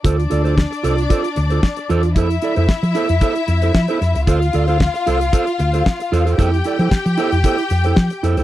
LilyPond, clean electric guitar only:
\new Staff \with { instrumentName = "Clean electric guitar" } { \time 4/4 \key d \dorian \tempo 4 = 114 <f' a' c''>16 r16 <f' a' d''>16 <f' a' c''>16 r8 <f' a' c''>16 r16 <f' a' c''>16 r8 <f' a' c''>16 r8 <f' a' c''>16 r16 | <e' a' c''>16 r16 <e' a' d''>16 <e' a' c''>16 r8 <e' a' c''>16 r16 <e' a' c''>16 r8 <e' a' c''>16 r16 <e' a' c''>16 r8 | <f' a' c''>16 r16 <f' a' d''>16 <f' a' c''>16 r8 <f' a' c''>16 r16 <f' a' c''>16 r8 <f' a' c''>16 r8 <f' a' c''>16 <f' a' c''>16 | <e' a' c''>16 r16 <e' a' d''>16 <e' a' c''>16 r8 <e' a' c''>16 r16 <e' a' c''>16 r8 <e' a' c''>16 r8 <e' a' c''>16 <e' a' c''>16 | }